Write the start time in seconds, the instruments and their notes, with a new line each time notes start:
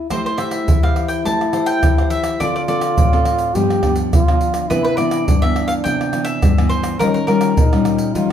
0.10 nylon-string guitar A3 E4 G4 C5, trombone E4, mandolin C5, pandeiro, tamborim, shaker, surdo
0.26 mandolin C5, pandeiro, shaker
0.38 nylon-string guitar E4 G4 C5, mandolin E5, pandeiro, tamborim, shaker
0.51 pandeiro, tamborim, shaker
0.68 nylon-string guitar E3, pandeiro, shaker, surdo
0.83 nylon-string guitar E4 G4 C5, mandolin F5, pandeiro, tamborim, shaker
0.96 pandeiro, tamborim
1.08 mandolin G5, pandeiro, shaker
1.25 nylon-string guitar A3 E4 G4 C5, mandolin A5, pandeiro, shaker, surdo
1.41 pandeiro, tamborim, shaker
1.53 nylon-string guitar E4 G4 C5, pandeiro, tamborim, shaker
1.66 mandolin G5, pandeiro, shaker
1.83 nylon-string guitar E3, pandeiro, tamborim, shaker, surdo
1.98 nylon-string guitar E4 G4 C5, pandeiro, tamborim, shaker
2.10 mandolin E5, pandeiro, shaker
2.24 pandeiro, tamborim, shaker
2.40 nylon-string guitar D3 C4 F4 A4, trombone F4, mandolin D5, pandeiro, tamborim, shaker, surdo
2.56 mandolin D5, pandeiro, shaker
2.68 nylon-string guitar C4 F4 A4, mandolin D5, pandeiro, tamborim, shaker
2.81 pandeiro, tamborim, shaker
2.98 nylon-string guitar A2, pandeiro, shaker, surdo
3.13 nylon-string guitar C4 F4 A4, pandeiro, tamborim, shaker
3.25 pandeiro, tamborim, shaker
3.38 pandeiro, shaker
3.55 nylon-string guitar G2 F3 B3 D4, trombone G4, pandeiro, shaker, surdo
3.70 pandeiro, tamborim, shaker
3.83 nylon-string guitar F3 B3 D4, pandeiro, tamborim, surdo
3.96 pandeiro, shaker
4.12 nylon-string guitar D3, trombone F4, pandeiro, tamborim, shaker, surdo
4.28 nylon-string guitar F3 B3 D4, pandeiro, tamborim, shaker
4.41 pandeiro, shaker
4.54 pandeiro, tamborim, shaker
4.70 nylon-string guitar C3 E3 B3 D4, trombone E4, mandolin B4, pandeiro, tamborim, shaker, surdo
4.84 mandolin B4, pandeiro, shaker
4.97 nylon-string guitar E3 B3 D4, mandolin D5, pandeiro, tamborim, shaker
5.11 pandeiro, tamborim, shaker
5.27 nylon-string guitar G2, trombone D4, pandeiro, shaker, surdo
5.42 nylon-string guitar E3 B3 D4, mandolin E5, pandeiro, tamborim, shaker
5.56 pandeiro, tamborim
5.68 mandolin F5, pandeiro, shaker
5.84 nylon-string guitar C3 E3 B3 D4, mandolin G5, pandeiro, shaker, surdo
6.01 pandeiro, tamborim, shaker
6.13 nylon-string guitar E3 B3 D4, pandeiro, tamborim, shaker
6.25 mandolin E5, pandeiro, shaker
6.42 nylon-string guitar G2, pandeiro, tamborim, shaker, surdo
6.58 nylon-string guitar E3 B3 D4, pandeiro, tamborim, shaker
6.69 mandolin C5, pandeiro
6.84 pandeiro, tamborim, shaker
6.99 nylon-string guitar D#3 G3 C#4 F4, trombone C#4, mandolin A#4, pandeiro, tamborim, shaker, surdo
7.14 mandolin A#4, pandeiro, shaker
7.27 nylon-string guitar G3 C#4 F4, mandolin A#4, pandeiro, tamborim
7.41 pandeiro, tamborim, shaker
7.57 nylon-string guitar A#2, trombone D#4, pandeiro, shaker, surdo
7.73 nylon-string guitar G3 C#4 F4, pandeiro, tamborim, shaker
7.85 pandeiro, tamborim, shaker
7.99 pandeiro, shaker
8.15 nylon-string guitar D#3 G3 C#4 F4, trombone F4, pandeiro, shaker, surdo